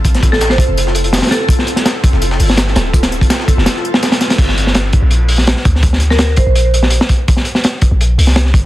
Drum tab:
CC |--------------------------------|--------------------------------|--------------------------------|x-------------------------------|
HH |x-x-x---x---x---x---x-x-xxxxx---|x---x-x-x---x---x---o---x---x---|x-x---x-x---x---x-------x-x-x-x-|x---x---x---x---x---o---x---x---|
TB |x---x---x---x---x---x---x---x---|x---x---x---x---x---x---x---x---|x---x---x---x---x---x---x---x---|--------------------------------|
SD |--o---o-o-o-------o-----ooooo---|--o---o-o-----o---o---o-o-o-o---|--o-----o-o---o-o-o---o-o-o-o-o-|--o---o-o-------------o-o-o---o-|
BD |o---o-------o-------------------|o-----------o-------------------|o-----o-----o-------------------|o-----------o---------------o---|

CC |--------------------------------|--------------------------------|
HH |x---x---x---x---x---x---x---x---|x---x---x---x---x---o---x---x---|
TB |--------------------------------|--------------------------------|
SD |--o---o-o-------------o---o-----|--o---o-o-------------o-o-o-----|
BD |o-----------o---------------o---|o-----------o---------------o---|